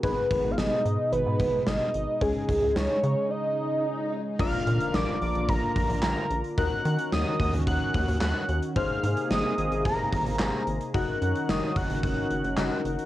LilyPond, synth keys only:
\new Staff \with { instrumentName = "Synth keys" } { \time 4/4 \key des \mixolydian \tempo 4 = 110 <ces' ees' aes'>1 | <des' ees' aes'>1 | \key ees \dorian <d' f' bes'>1 | <ees' ges' bes'>1 |
<ees' aes' c''>1 | <ees' ges' bes'>2. <ees' ges' bes'>4 | }